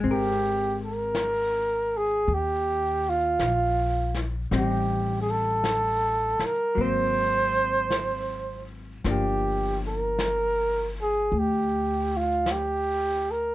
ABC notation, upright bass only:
X:1
M:4/4
L:1/8
Q:"Swing" 1/4=53
K:Ablyd
V:1 name="Upright bass" clef=bass
A,,,4 E,,2 B,,,2 | =A,,,3 z _A,,,4 | G,,,4 D,,4 |]